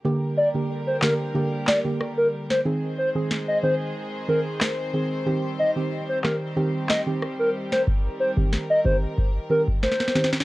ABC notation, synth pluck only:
X:1
M:4/4
L:1/16
Q:1/4=92
K:Cm
V:1 name="Synth pluck"
[D,B,G]3 [D,B,G]3 [D,B,G]2 [D,B,G]3 [D,B,G] z4 | [E,CA]3 [E,CA]3 [E,CA]2 z2 [E,CA] z3 [E,CA]2 | [E,CG]3 [E,CG]3 [E,CG]2 [E,CG]3 [E,CG] z4 | z3 [E,CG]3 [E,CG]2 z2 [E,CG] z3 [E,CG]2 |]